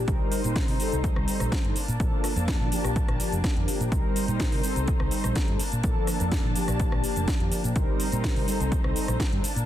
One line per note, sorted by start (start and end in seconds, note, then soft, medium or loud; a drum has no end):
0.07 0.17 C2 loud
0.07 0.41 G3 medium
0.07 0.41 C4 medium
0.07 1.74 D#4 medium
0.07 0.41 D#4 medium
0.07 0.42 A#4 loud
0.07 1.74 C5 medium
0.07 kick loud
0.07 closed hi-hat medium
0.07 shaker soft
0.32 open hi-hat loud
0.32 shaker medium
0.44 0.61 A#2 medium
0.44 0.77 G3 medium
0.44 0.77 C4 medium
0.44 0.77 D#4 medium
0.44 0.77 A#4 medium
0.44 closed hi-hat soft
0.44 shaker soft
0.56 kick loud
0.56 snare loud
0.56 closed hi-hat medium
0.56 shaker soft
0.68 0.77 C3 medium
0.68 open hi-hat medium
0.79 1.74 G3 medium
0.79 1.74 C4 medium
0.79 1.75 D#4 medium
0.79 1.75 A4 medium
0.79 open hi-hat loud
0.79 shaker medium
0.92 1.09 C2 medium
0.92 closed hi-hat medium
0.92 shaker soft
1.04 kick loud
1.04 closed hi-hat medium
1.04 shaker soft
1.16 1.24 C2 medium
1.16 cross-stick medium
1.28 open hi-hat loud
1.28 shaker medium
1.40 1.49 A#1 medium
1.40 cross-stick medium
1.40 closed hi-hat soft
1.40 shaker soft
1.52 kick loud
1.52 snare loud
1.52 closed hi-hat medium
1.52 shaker soft
1.65 1.73 G2 medium
1.65 closed hi-hat soft
1.76 3.90 A#3 medium
1.76 3.90 D4 medium
1.76 3.90 A5 medium
1.76 open hi-hat loud
1.76 shaker medium
1.88 1.96 A#2 medium
1.88 closed hi-hat medium
1.88 shaker soft
2.00 2.09 A#1 medium
2.00 2.33 F3 medium
2.00 2.33 A#3 medium
2.00 2.33 D4 medium
2.00 2.34 A4 medium
2.00 kick loud
2.00 closed hi-hat medium
2.00 shaker soft
2.24 cross-stick medium
2.24 open hi-hat loud
2.24 shaker medium
2.36 2.53 F2 medium
2.36 2.69 F3 medium
2.36 2.69 A#3 medium
2.36 2.69 D4 medium
2.36 2.69 A4 medium
2.36 closed hi-hat soft
2.36 shaker soft
2.48 kick loud
2.48 snare loud
2.48 closed hi-hat medium
2.48 shaker soft
2.60 2.68 A#2 medium
2.71 3.89 F3 medium
2.71 3.89 A#3 medium
2.71 3.89 D4 medium
2.71 3.89 G4 medium
2.71 muted fingered electric bass stroke soft
2.71 open hi-hat loud
2.71 shaker medium
2.84 3.01 A#1 medium
2.84 cross-stick medium
2.84 closed hi-hat soft
2.84 shaker soft
2.96 kick loud
2.96 closed hi-hat medium
2.96 shaker soft
3.08 3.16 A#1 medium
3.08 cross-stick medium
3.08 closed hi-hat soft
3.20 open hi-hat loud
3.20 shaker medium
3.32 3.40 F1 medium
3.32 closed hi-hat soft
3.32 shaker soft
3.44 kick loud
3.44 snare loud
3.44 closed hi-hat medium
3.44 shaker soft
3.56 3.64 F2 medium
3.56 closed hi-hat soft
3.68 muted fingered electric bass stroke soft
3.68 open hi-hat loud
3.68 shaker medium
3.80 3.88 A#2 medium
3.80 closed hi-hat soft
3.80 shaker soft
3.91 4.01 C2 medium
3.91 4.25 G3 medium
3.91 4.25 C4 medium
3.91 4.25 D#4 medium
3.91 5.58 D#4 medium
3.91 4.25 A#4 medium
3.91 5.58 C5 medium
3.91 kick loud
3.91 closed hi-hat medium
3.91 shaker soft
4.16 open hi-hat loud
4.16 shaker medium
4.28 4.45 A#2 medium
4.28 4.61 G3 medium
4.28 4.61 C4 medium
4.28 4.61 D#4 medium
4.28 4.61 A#4 medium
4.28 closed hi-hat soft
4.28 shaker soft
4.40 kick loud
4.40 snare loud
4.40 closed hi-hat medium
4.40 shaker soft
4.52 4.60 C3 medium
4.52 open hi-hat medium
4.63 5.58 G3 medium
4.63 5.58 C4 medium
4.63 5.59 D#4 medium
4.63 5.59 A4 medium
4.63 open hi-hat loud
4.63 shaker medium
4.76 4.93 C2 loud
4.76 closed hi-hat soft
4.76 shaker soft
4.88 kick loud
4.88 closed hi-hat medium
4.88 shaker soft
5.00 5.08 C2 medium
5.00 cross-stick medium
5.11 open hi-hat loud
5.11 shaker medium
5.24 5.33 A#1 medium
5.24 cross-stick medium
5.24 closed hi-hat soft
5.24 shaker soft
5.35 kick loud
5.35 snare loud
5.35 closed hi-hat medium
5.35 shaker soft
5.48 5.57 G2 medium
5.48 closed hi-hat soft
5.59 7.73 A#3 medium
5.59 7.73 D4 medium
5.59 7.73 A5 medium
5.59 muted fingered electric bass stroke soft
5.59 open hi-hat loud
5.59 shaker medium
5.72 5.80 A#2 medium
5.72 closed hi-hat medium
5.72 shaker soft
5.83 5.93 A#1 medium
5.83 6.17 F3 medium
5.83 6.17 A#3 medium
5.83 6.17 D4 medium
5.83 6.18 A4 medium
5.83 kick loud
5.83 closed hi-hat medium
5.83 shaker soft
6.07 cross-stick medium
6.07 open hi-hat loud
6.07 shaker medium
6.20 6.37 F2 medium
6.20 6.53 F3 medium
6.20 6.53 A#3 medium
6.20 6.53 D4 medium
6.20 6.53 A4 medium
6.20 closed hi-hat soft
6.20 shaker soft
6.32 kick loud
6.32 snare loud
6.32 closed hi-hat medium
6.32 shaker soft
6.44 6.52 A#2 medium
6.55 7.73 F3 medium
6.55 7.73 A#3 medium
6.55 7.73 D4 medium
6.55 7.73 G4 medium
6.55 open hi-hat loud
6.55 shaker medium
6.68 6.85 A#1 loud
6.68 cross-stick medium
6.68 closed hi-hat medium
6.68 shaker soft
6.80 kick loud
6.80 closed hi-hat medium
6.80 shaker soft
6.92 7.00 A#1 loud
6.92 cross-stick medium
7.04 open hi-hat loud
7.04 shaker medium
7.16 7.24 F1 medium
7.16 closed hi-hat medium
7.16 shaker soft
7.28 kick loud
7.28 snare loud
7.28 closed hi-hat medium
7.28 shaker soft
7.40 7.48 F2 medium
7.40 closed hi-hat soft
7.52 muted fingered electric bass stroke soft
7.52 open hi-hat loud
7.52 shaker medium
7.64 7.72 A#2 medium
7.64 closed hi-hat medium
7.64 shaker soft
7.75 7.85 C2 loud
7.75 8.09 G3 medium
7.75 8.09 C4 medium
7.75 9.42 D#4 medium
7.75 8.09 D#4 medium
7.75 8.09 A#4 loud
7.75 9.42 C5 medium
7.75 kick loud
7.75 closed hi-hat medium
7.75 shaker soft
8.00 open hi-hat loud
8.00 shaker medium
8.12 8.29 A#2 medium
8.12 8.45 G3 medium
8.12 8.45 C4 medium
8.12 8.45 D#4 medium
8.12 8.45 A#4 medium
8.12 closed hi-hat medium
8.12 shaker soft
8.24 kick loud
8.24 snare loud
8.24 closed hi-hat medium
8.24 shaker soft
8.36 8.45 C3 medium
8.36 open hi-hat medium
8.47 9.42 G3 medium
8.47 9.42 C4 medium
8.47 9.42 D#4 medium
8.47 9.43 A4 medium
8.47 open hi-hat loud
8.47 shaker medium
8.60 8.77 C2 medium
8.60 closed hi-hat medium
8.60 shaker soft
8.72 kick loud
8.72 closed hi-hat medium
8.72 shaker soft
8.84 8.92 C2 loud
8.84 cross-stick medium
8.96 open hi-hat loud
8.96 shaker medium
9.08 9.16 A#1 medium
9.08 cross-stick medium
9.08 closed hi-hat medium
9.08 shaker soft
9.20 kick loud
9.20 snare loud
9.20 closed hi-hat medium
9.20 shaker soft
9.32 9.40 G2 medium
9.32 closed hi-hat soft
9.43 9.66 A#3 medium
9.43 9.66 D4 medium
9.43 9.66 A5 medium
9.43 muted fingered electric bass stroke soft
9.43 open hi-hat loud
9.43 shaker medium
9.56 9.64 A#2 medium
9.56 closed hi-hat medium
9.56 shaker soft